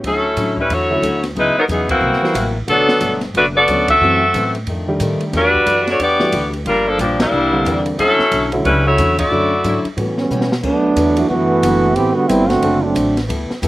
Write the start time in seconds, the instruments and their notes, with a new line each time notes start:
0.04 upright bass D2, steel-string acoustic guitar D3 F#3 C#4 E4, saxophone section F#3 C#4 E4 A4, kick, ride
0.37 upright bass A2, steel-string acoustic guitar D3 F#3 C#4 E4, kick, hi-hat pedal, ride
0.57 saxophone section G3 C#4 E4 B4, kick
0.69 upright bass E2, steel-string acoustic guitar D3 F#3 C#4 E4, saxophone section A3 E4 F#4 C#5, kick, ride
0.90 grand piano D3 F#3 A3 C#4 E4
1.02 upright bass D2, steel-string acoustic guitar D3 F#3 C#4 E4, kick, hi-hat pedal, ride
1.23 snare, ride
1.35 upright bass C#2, steel-string acoustic guitar C#3 F#3 B3 E4, saxophone section G#3 D#4 E4 B4, kick, ride
1.56 saxophone section F#3 B3 D#4 A#4, muted upright bass stroke
1.68 upright bass E2, steel-string acoustic guitar C#3 F#3 B3 E4, saxophone section E3 B3 D#4 G#4, kick, hi-hat pedal, ride
1.89 saxophone section E3 A#3 C4 F#4, kick, ride
2.00 upright bass C2, steel-string acoustic guitar C3 F#3 A#3 E4
2.13 snare
2.21 grand piano E3 G3 A#3 C4 F#4, muted upright bass stroke, snare
2.34 upright bass A1, steel-string acoustic guitar C3 F#3 A#3 E4, kick, hi-hat pedal, ride
2.67 upright bass B1, steel-string acoustic guitar B2 F#3 A3 D4, grand piano D3 F#3 A3 B3 F#4, saxophone section F#3 B3 D4 A4, kick, ride
2.89 muted upright bass stroke, snare
3.00 upright bass G1, steel-string acoustic guitar B2 F#3 A3 D4, kick, hi-hat pedal, ride
3.21 snare, ride
3.34 upright bass F#1, steel-string acoustic guitar B2 F#3 A3 D4, saxophone section A3 D4 F#4 B4, kick, ride
3.56 saxophone section B3 F#4 A4 D5
3.68 upright bass D2, steel-string acoustic guitar B2 F#3 A3 D4, grand piano D3 F#3 A3 B3 C#4, kick, hi-hat pedal, ride
3.88 saxophone section C4 F#4 A4 E5, kick, ride
4.00 upright bass F#2, steel-string acoustic guitar F#2 E3 A3 C4, grand piano E3 F#3 A3 C4 F#4
4.34 steel-string acoustic guitar F#2 E3 A3 C4, upright bass A2, kick, hi-hat pedal, ride
4.55 ride
4.67 upright bass F2, steel-string acoustic guitar F2 D#3 A3 D4, kick, ride
4.88 grand piano D#3 G3 A3 D4 G4
5.00 steel-string acoustic guitar F2 D#3 A3 D4, upright bass A2, kick, hi-hat pedal, ride
5.20 muted upright bass stroke, ride
5.33 upright bass E2, steel-string acoustic guitar E3 A3 D4 G4, saxophone section G3 D4 F#4 B4, kick, snare, ride
5.54 kick
5.66 upright bass F#2, steel-string acoustic guitar E3 A3 D4 G4, kick, hi-hat pedal, ride
5.87 saxophone section A3 D4 F#4 C#5, snare, ride
5.99 upright bass E2, steel-string acoustic guitar E3 A3 D4 G4, saxophone section B3 F#4 G4 D5, kick, ride
6.20 grand piano E3 G3 A3 D4 F#4, snare
6.32 upright bass D2, steel-string acoustic guitar E3 A3 D4 G4, kick, hi-hat pedal, ride
6.53 ride
6.65 upright bass G1, steel-string acoustic guitar G2 F3 A#3 D4, saxophone section G3 D4 F4 A#4, kick, ride
6.88 saxophone section F3 A#3 D4 A4
6.98 upright bass A#1, steel-string acoustic guitar G2 F3 A#3 D4, grand piano F3 G3 A#3 D4 G4, saxophone section F3 A#3 D4 G4, kick, hi-hat pedal, ride
7.20 saxophone section G3 A#3 D4 E4, snare, ride
7.31 upright bass C2, steel-string acoustic guitar C3 E3 A#3 D4
7.52 grand piano D3 G3 A#3 C4 D4
7.65 upright bass E2, steel-string acoustic guitar C3 E3 A#3 D4, kick, hi-hat pedal, ride
7.86 ride
7.99 upright bass D2, steel-string acoustic guitar D3 F#3 C#4 E4, saxophone section F#3 C#4 E4 A4, kick, ride
8.19 muted upright bass stroke, snare
8.31 upright bass B1, steel-string acoustic guitar D3 F#3 C#4 E4, kick, hi-hat pedal, ride
8.52 grand piano D3 F#3 A3 C#4 E4, ride
8.65 upright bass C#2, steel-string acoustic guitar D3 F#3 C#4 E4, saxophone section G3 C#4 E4 B4, kick, ride
8.86 saxophone section A3 E4 F#4 C#5
8.98 upright bass E2, steel-string acoustic guitar D3 F#3 C#4 E4, hi-hat pedal, ride
9.19 saxophone section A3 E4 F#4 D5, kick, ride
9.31 upright bass F#2, steel-string acoustic guitar D3 F#3 C#4 E4, grand piano D3 F#3 A3 C#4 E4
9.64 upright bass G#2, steel-string acoustic guitar D3 F#3 C#4 E4, kick, hi-hat pedal, ride
9.85 muted upright bass stroke, ride
9.97 upright bass A2, steel-string acoustic guitar A2 G3 B3 C#4, grand piano E3 A3 B3 C#4 F#4, kick, ride
10.18 trombone section E3 G3 B3 C#4, snare
10.31 steel-string acoustic guitar A2 G3 B3 C#4, upright bass B2, hi-hat pedal
10.41 snare
10.52 snare
10.62 upright bass D2, steel-string acoustic guitar D3 F#3 B3 E4, trombone section F#3 A3 B3 D4, kick, crash
10.96 upright bass E2, steel-string acoustic guitar D3 F#3 B3 E4, hi-hat pedal, ride
11.17 grand piano E3 A3 B3 D4 F#4, ride
11.28 upright bass F#2, steel-string acoustic guitar D3 F#3 B3 E4, trombone section E3 A3 B3 F#4, kick
11.63 upright bass F#1, steel-string acoustic guitar D3 F#3 B3 E4, kick, hi-hat pedal, ride
11.94 upright bass A1, trombone section E3 B3 C4 G4, steel-string acoustic guitar A3 C4 G4 B4, kick, ride
12.14 trombone section D3 G3 B3 F#4
12.27 upright bass G1, trombone section G3 B3 C4 E4, steel-string acoustic guitar A3 C4 G4, kick, hi-hat pedal, ride
12.31 steel-string acoustic guitar B4
12.47 trombone section D3 A3 C4 F#4, snare, ride
12.62 upright bass F#1, steel-string acoustic guitar D3 A3 C4 F#4, grand piano F#3 A3 C4 D4 A4, kick, ride
12.82 trombone section F#3 A3 C4 D4
12.95 upright bass A1, steel-string acoustic guitar D3 A3 C4 F#4, kick, hi-hat pedal, ride
13.17 snare, ride
13.27 upright bass D2, steel-string acoustic guitar G3 B3 E4 A4, kick, ride
13.50 muted upright bass stroke, snare
13.62 upright bass E2, steel-string acoustic guitar G3 B3 E4 A4, kick, hi-hat pedal, ride